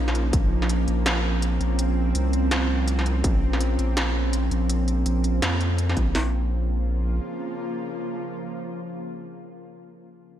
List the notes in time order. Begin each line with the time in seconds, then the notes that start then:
Already playing: A#1 F3 A#3 C#4 D#4
0.08 snare
0.15 closed hi-hat
0.33 A#1 C4, kick, closed hi-hat
0.62 snare
0.69 closed hi-hat
0.88 A#1, closed hi-hat
1.06 snare, closed hi-hat
1.42 closed hi-hat
1.60 A#1, closed hi-hat
1.79 closed hi-hat
2.15 C2, closed hi-hat
2.33 closed hi-hat
2.51 snare, closed hi-hat
2.88 closed hi-hat
2.99 snare
3.06 closed hi-hat
3.24 A#1, kick, closed hi-hat
3.53 snare
3.61 closed hi-hat
3.79 A#1, closed hi-hat
3.97 snare, closed hi-hat
4.33 closed hi-hat
4.51 A#1, closed hi-hat
4.70 closed hi-hat
4.88 closed hi-hat
5.06 A#1, closed hi-hat
5.24 closed hi-hat
5.42 F2, snare, closed hi-hat
5.61 closed hi-hat
5.78 closed hi-hat
5.89 snare
5.97 A#1, kick, closed hi-hat
6.15 A#1 C#3 F3 A#3 F4, snare, open hi-hat